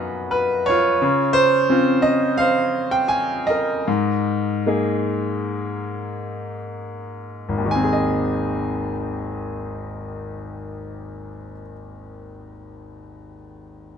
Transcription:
Already playing: F#2 F#3 B3 D#4 D#5 F5 F#5 A#5 B5
0.31 B4
0.66 F4 C#5
1.02 C#3
1.33 C5
1.70 C4 C#4 F4
2.02 D#5
2.38 C5 F5
2.91 G5
3.08 G#5
3.47 A#4 D#5
3.88 G#2
4.66 A#3 D#4 G#4
7.49 G#1
7.58 D#2
7.66 D#3
7.71 G#5
7.75 C4
7.84 G#4
7.93 D#5

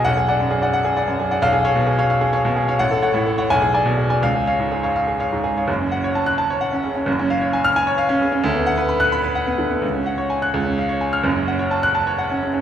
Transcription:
0.04 B1 F#5
0.17 G#4
0.28 D5 F#5
0.40 F#2
0.51 G#4
0.62 D5 F#5
0.73 F#5
0.85 G#4
0.97 D5 F#5
1.08 F#2
1.20 G#4
1.31 D5 F#5
1.42 B1 F5
1.53 G#4
1.65 C#5 F5
1.76 B2
1.87 G#4
1.98 C#5 F5
2.10 F5
2.21 G#4
2.33 C#5 F5
2.45 B2
2.56 G#4
2.68 C#5 F5
2.79 A1 F#5
2.91 A4
3.02 C#5 F#5
3.14 A2
3.26 A4
3.38 C#5 F#5
3.50 B1 G#5
3.62 G#4
3.74 D5 G#5
3.86 B2
3.98 G#4
4.10 D5 G#5
4.23 C#2 F5
4.35 G#4
4.47 C#5 F5
4.60 G#2
4.72 G#4
4.83 C#5 F5
4.96 F5
5.08 G#4
5.20 C#5 F5
5.32 G#2
5.44 G#4
5.57 C#5 F5
5.68 F#1 F#2
5.81 C#4
5.92 F#5
6.04 C#5
6.15 A5
6.26 F#6
6.38 A5
6.50 C#5
6.61 F#5
6.72 C#4
6.84 C#3
6.96 C#4
7.06 F#1 F#2
7.19 C#4
7.30 F5
7.42 C#5
7.53 G#5
7.64 F6
7.76 G#5
7.87 C#5
7.98 F5
8.09 C#4
8.21 C#3
8.32 C#4
8.44 D2
8.55 B3
8.66 F#5
8.78 B4
8.89 B5
9.00 F#6
9.12 B5
9.24 B4
9.35 F#5
9.47 B3
9.58 D3
9.70 B3
9.82 C#2
9.94 C#4
10.06 F#5
10.18 C#5
10.30 G#5
10.42 F#6
10.54 C#2
10.66 C#4
10.78 F5
10.89 C#5
11.01 G#5
11.13 F6
11.24 F#1 F#2
11.36 C#4
11.48 F#5
11.59 C#5
11.71 A5
11.83 F#6
11.95 A5
12.07 C#5
12.18 F#5
12.30 C#4
12.43 C#3
12.54 C#4

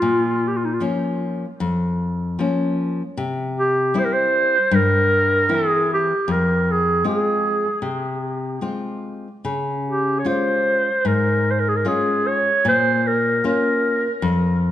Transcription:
Already playing: F4
0.02 A#2
0.47 G4
0.56 F4
0.65 D#4
0.74 F4
0.80 F3 A#3 C#4
1.60 F2
2.39 F3 A#3 C#4
3.17 C3
3.59 G4
3.94 G3 C4 E4
3.99 C5
4.05 A#4
4.13 C5
4.71 G2 A#4
5.49 E3 C4 E4
5.54 G#4
5.94 G4
6.28 F2 A#4
6.71 G#4
7.04 G#3 C4 F4 G#4
7.82 C3
8.61 G#3 C4 F4
9.45 C#3
9.88 G4
10.19 C#5
10.25 G#3 C#4 F4 C5
11.05 G#2 A#4
11.51 C5
11.60 A#4
11.69 G#4
11.76 A#4
11.85 G#3 C#4 F4 G#4
12.27 C#5
12.65 A#2 C5
13.07 A#4
13.44 A#3 C#4 F4 A#4
14.22 F2

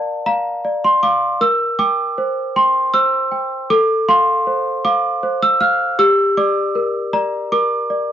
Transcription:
Already playing: A#4 D5 F5 A5 A#5
0.26 F5 A#5
0.65 D5
0.84 C6
1.03 F5 D6
1.41 A#4 E6
1.79 G5 D6
2.18 C5
2.56 G5 C6
2.94 C5 E6
3.32 G5
3.70 A4 D6
4.09 F5 C6
4.47 C5
4.85 F5 D6
5.23 C5
5.42 E6
5.61 F5 F6
5.99 G4 E6
6.37 D5 D6
6.75 A#4
7.13 D5 A#5
7.52 A#4 D6
7.90 D5

